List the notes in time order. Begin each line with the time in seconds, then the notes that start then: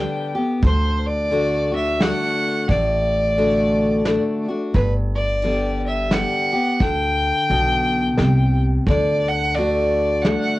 Already playing: D3 G3 B3 G4 G5
0.35 B3 G4
0.62 D2 D3 C5, kick, closed hi-hat
0.97 C5
1.07 D5
1.31 D3 A3 D4 F#4, closed hi-hat
1.72 D4 F#4 E5
2.00 D3 A3 D4 F#4 F#5, snare, closed hi-hat
2.69 A1 A2 D5, kick, closed hi-hat
3.38 D3 A3 D4 F#4, closed hi-hat
4.05 D3 A3 D4 F#4, snare, closed hi-hat
4.48 D4 F#4
4.74 G1 G2 B4, kick, closed hi-hat
5.16 D5
5.42 D3 G3 B3 G4, closed hi-hat
5.87 E5
6.11 D3 G3 B3 G4 F#5, snare, closed hi-hat
6.53 B3 G4
6.80 D2 D3 G5, kick, closed hi-hat
7.49 B1 B2, closed hi-hat
8.17 C2 C3, snare, closed hi-hat
8.87 D2 D3 D5, kick, closed hi-hat
9.28 F#5
9.55 D3 A3 D4 F#4 D5, closed hi-hat
10.22 D3 F#5, snare, closed hi-hat
10.26 A3 D4 F#4